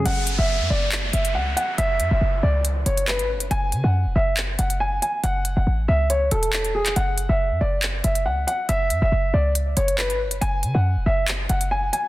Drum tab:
HH |x-x-----x-xx--x-|x-x-----x-xxxx-x|x-x-----x-xx--x-|x-x-----x-xxxx-x|
CP |--------x-------|------------x---|--------x-------|------------x--x|

HH |x-x-----x-xx--x-|x-x-----x-xxxx-x|x-x-----x-xx--x-|
CP |--------x-------|------------x---|--------x-------|